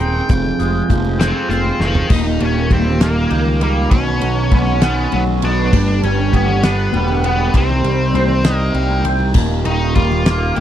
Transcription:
0.00 0.20 D#1 medium
0.00 0.30 D#3 medium
0.00 0.28 G#3 medium
0.00 0.30 G#3 medium
0.00 0.30 C4 medium
0.00 2.08 C4 medium
0.00 0.29 D#4 medium
0.00 0.30 D#4 medium
0.00 2.08 G#4 medium
0.00 1.18 G5 medium
0.29 0.51 F1 medium
0.29 1.81 F2 medium
0.29 2.09 G#3 medium
0.29 2.10 F4 medium
0.29 kick loud
0.29 closed hi-hat medium
0.29 high conga loud
0.45 low conga medium
0.59 0.81 F1 medium
0.59 2.11 G#3 medium
0.59 closed hi-hat medium
0.89 1.31 F1 medium
0.89 2.11 F3 medium
0.89 kick medium
0.89 closed hi-hat medium
0.89 high conga medium
0.89 low conga soft
1.05 low conga medium
1.19 1.48 C4 medium
1.19 1.79 C4 medium
1.19 1.50 F5 medium
1.19 snare loud
1.19 closed hi-hat loud
1.49 1.70 F1 medium
1.49 1.81 C4 medium
1.49 2.11 F4 medium
1.49 1.80 C5 medium
1.49 closed hi-hat medium
1.49 high conga medium
1.65 low conga medium
1.80 2.01 F1 medium
1.80 2.11 C4 medium
1.80 2.43 D#4 loud
1.80 2.11 A#4 loud
1.80 snare medium
1.80 low conga soft
1.95 floor tom medium
2.10 2.38 D#1 medium
2.10 3.62 D#2 medium
2.10 3.91 A#3 medium
2.10 3.91 D#4 medium
2.10 3.90 F4 medium
2.10 3.90 G4 medium
2.10 kick loud
2.10 crash loud
2.10 high conga loud
2.10 low conga soft
2.25 low conga medium
2.40 2.68 D#1 medium
2.40 3.29 D#3 medium
2.40 2.72 C#4 medium
2.40 ride medium
2.70 3.25 D#1 medium
2.70 3.60 G3 medium
2.70 3.02 C4 medium
2.70 kick medium
2.70 ride medium
2.70 high conga medium
2.85 low conga medium
3.01 3.92 A#3 medium
3.01 3.62 A#3 medium
3.01 snare loud
3.01 ride loud
3.30 3.86 C#2 medium
3.30 3.92 D#3 medium
3.30 ride medium
3.30 high conga medium
3.46 low conga medium
3.61 3.92 G3 medium
3.61 3.91 A#3 medium
3.61 ride medium
3.91 4.19 B1 medium
3.91 5.43 B2 medium
3.91 5.71 D#3 medium
3.91 7.51 B3 medium
3.91 4.83 C#4 loud
3.91 5.71 F#4 medium
3.91 5.71 C#5 medium
3.91 kick loud
3.91 ride loud
3.91 high conga medium
3.91 low conga soft
4.07 low conga medium
4.21 4.50 B1 medium
4.21 5.12 F#3 medium
4.21 ride medium
4.51 5.06 B1 loud
4.51 5.43 B3 medium
4.51 kick medium
4.51 ride medium
4.51 high conga loud
4.67 low conga medium
4.82 5.13 B3 medium
4.82 5.73 C#4 medium
4.82 snare loud
4.82 ride loud
4.98 low conga soft
5.12 5.40 B1 medium
5.12 5.73 F#3 medium
5.12 5.22 B3 medium
5.12 ride medium
5.12 high conga medium
5.27 low conga medium
5.42 5.70 B1 medium
5.42 5.74 B3 medium
5.42 6.00 D4 loud
5.42 ride medium
5.73 6.00 G1 medium
5.73 7.24 G2 medium
5.73 7.53 D3 medium
5.73 9.33 G3 medium
5.73 9.33 G4 medium
5.73 kick loud
5.73 crash loud
5.73 high conga loud
5.73 low conga soft
5.88 low conga medium
6.03 6.30 G1 medium
6.03 6.93 G3 medium
6.03 6.35 C#4 loud
6.03 ride medium
6.33 6.87 G1 medium
6.33 7.24 B3 medium
6.33 6.64 C#4 medium
6.33 kick medium
6.33 ride medium
6.33 high conga medium
6.48 low conga medium
6.63 7.24 B3 medium
6.63 7.54 D4 medium
6.63 snare loud
6.63 ride loud
6.93 7.48 E1 medium
6.93 7.84 G3 medium
6.93 ride medium
6.93 high conga loud
7.08 low conga medium
7.24 7.55 B3 medium
7.24 7.56 B3 medium
7.24 ride medium
7.54 7.82 C2 medium
7.54 9.05 C3 medium
7.54 9.34 C4 medium
7.54 8.54 C4 medium
7.54 10.60 D#4 medium
7.54 kick loud
7.54 ride loud
7.54 high conga loud
7.69 low conga medium
7.84 8.11 C2 medium
7.84 8.74 G3 medium
7.84 ride medium
7.99 low conga soft
8.14 8.69 C2 medium
8.14 9.04 C4 medium
8.14 ride medium
8.14 high conga medium
8.29 low conga medium
8.44 10.26 D#4 medium
8.44 snare loud
8.44 ride loud
8.54 9.03 A#3 medium
8.59 low conga soft
8.74 9.02 C2 medium
8.74 9.36 G3 medium
8.74 ride medium
8.74 high conga medium
8.90 high conga medium
9.04 9.32 C2 medium
9.04 9.36 C4 medium
9.04 ride medium
9.04 low conga medium
9.20 low conga medium
9.34 9.63 D#1 medium
9.34 10.60 D#2 medium
9.34 10.60 A#3 medium
9.34 10.60 F4 medium
9.34 10.60 G4 medium
9.34 kick loud
9.34 crash loud
9.34 high conga medium
9.34 low conga soft
9.51 low conga medium
9.65 9.93 D#1 medium
9.65 10.56 D#3 medium
9.65 9.95 D#4 loud
9.65 ride medium
9.95 10.51 D#1 loud
9.95 10.60 G3 medium
9.95 10.58 F4 medium
9.95 kick medium
9.95 ride medium
9.95 high conga medium
10.12 low conga medium
10.26 10.60 A#3 medium
10.26 snare loud
10.26 ride loud
10.42 low conga soft
10.55 10.60 C#2 medium
10.55 10.60 D#3 medium
10.55 10.60 G4 loud
10.55 ride medium
10.55 high conga medium

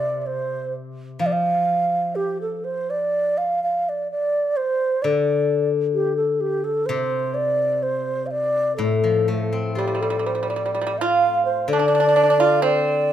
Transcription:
0.00 1.21 C3 medium
0.00 0.22 D5 medium
0.22 0.28 D5 soft
0.26 0.74 C5 medium
1.19 4.11 F3 soft
1.19 1.28 F5 medium
1.26 1.34 D5 medium
1.32 2.17 F5 medium
2.15 2.41 G4 medium
2.41 2.66 A4 medium
2.64 2.92 C5 medium
2.90 3.39 D5 medium
3.38 3.63 F5 medium
3.63 3.90 F5 medium
3.89 4.11 D5 medium
4.11 4.58 D5 medium
4.57 5.04 C5 medium
5.02 6.89 D3 medium
5.02 5.70 D5 medium
5.94 6.16 G4 medium
6.17 6.42 A4 medium
6.41 6.66 G4 medium
6.64 6.88 A4 medium
6.86 8.79 C3 medium
6.86 7.36 C5 medium
7.34 7.84 D5 medium
7.83 8.28 C5 medium
8.27 8.32 F5 soft
8.31 8.76 D5 medium
8.77 11.69 A2 soft
8.77 9.71 A4 medium
9.04 10.97 F3 soft
9.28 11.21 A3 soft
9.53 11.45 C4 soft
9.75 9.84 G3 soft
9.75 11.69 F4 soft
9.75 10.03 G4 medium
9.87 9.93 G3 soft
9.95 10.00 G3 soft
10.01 10.08 G3 soft
10.01 10.28 A4 medium
10.10 10.16 G3 soft
10.19 10.24 G3 soft
10.26 10.31 G3 soft
10.26 10.50 C5 medium
10.35 10.39 G3 soft
10.43 10.47 G3 soft
10.48 10.54 G3 soft
10.48 11.00 D5 medium
10.56 10.61 G3 soft
10.66 10.70 G3 soft
10.75 10.78 G3 soft
10.81 10.86 G3 soft
10.87 10.92 G3 medium
10.98 11.67 F4 medium
10.98 11.45 F5 medium
11.45 11.71 C5 medium
11.68 13.13 D3 medium
11.68 12.64 D5 medium
11.73 11.78 D4 medium
11.79 11.85 D4 soft
11.88 11.93 D4 soft
11.95 11.99 D4 soft
12.00 12.07 D4 soft
12.09 12.15 D4 soft
12.16 12.22 D4 soft
12.23 12.29 D4 soft
12.30 12.36 D4 medium
12.40 12.62 F4 medium
12.62 13.13 C4 medium
12.62 13.13 D5 medium

